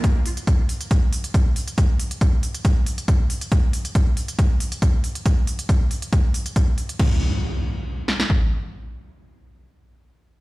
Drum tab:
CC |----------------|----------------|----------------|----------------|
HH |x-oxx-oxx-oxx-ox|x-oxx-oxx-oxx-ox|x-oxx-oxx-oxx-ox|x-oxx-oxx-oxx-ox|
SD |----------------|----------------|----------------|----------------|
BD |o---o---o---o---|o---o---o---o---|o---o---o---o---|o---o---o---o---|

CC |x---------------|----------------|
HH |----------------|----------------|
SD |----------oo----|----------------|
BD |o-----------o---|----------------|